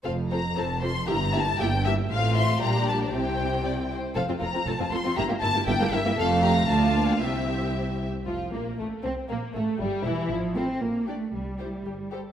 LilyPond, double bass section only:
\new Staff \with { instrumentName = "Double bass section" } { \clef bass \time 2/4 \key f \major \tempo 4 = 117 f,,4 f,,4 | g,,4 g,,4 | a,,4 bes,,4 | c,4. r8 |
f,,16 r16 f,,16 r16 f,,16 r16 f,,16 r16 | g,,16 r16 g,,16 r16 g,,16 r16 g,,16 r16 | f,,4 d,4 | c,4. r8 |
f,,8 bes,,8 a,,8 c,8 | bes,,8 a,,8 g,,8 e,,8 | a,,4 bes,,4 | c,4 g,,4 | }